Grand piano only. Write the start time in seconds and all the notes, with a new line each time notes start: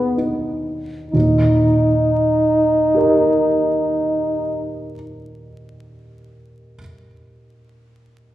Already playing: D#2 D#3 G#4 D#5
0.18 D#4
1.13 D#2 A#2
2.94 G4 A#4
2.99 D#5